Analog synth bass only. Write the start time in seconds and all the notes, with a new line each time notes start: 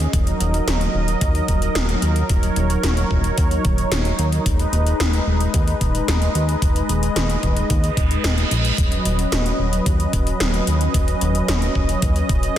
0.13 D#1
0.40 D#1
0.67 D#1
0.94 D#1
1.21 D#2
1.48 D#1
1.75 D#1
2.02 D#2
2.30 D#1
2.57 D#1
2.84 D#1
3.11 D#1
3.38 D#2
3.65 D#1
3.92 D#1
4.19 D#2
4.46 D#1
4.73 D#1
5.00 D#1
5.27 D#1
5.54 D#2
5.81 D#1
6.08 D#1
6.35 D#2
6.62 D#1
6.89 D#1
7.16 D#1
7.43 D#1
7.70 D#2
7.97 D#1
8.24 D#1
8.51 A#1
8.78 D#1
9.05 D#1
9.32 D#1
9.59 D#1
9.86 D#2
10.13 D#1
10.41 D#1
10.67 D#2
10.94 D#1
11.22 D#1
11.48 D#1
11.75 D#1
12.02 D#2
12.29 D#1